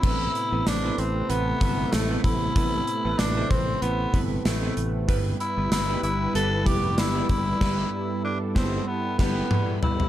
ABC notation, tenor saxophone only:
X:1
M:4/4
L:1/16
Q:"Swing 16ths" 1/4=95
K:Am
V:1 name="Tenor saxophone"
E4 D2 C2 B,4 A,2 E2- | E4 D2 C2 B,2 z2 A,3 z | z2 E2 E2 E2 A2 G2 E2 E2- | E4 D2 C2 B,2 B,4 E2 |]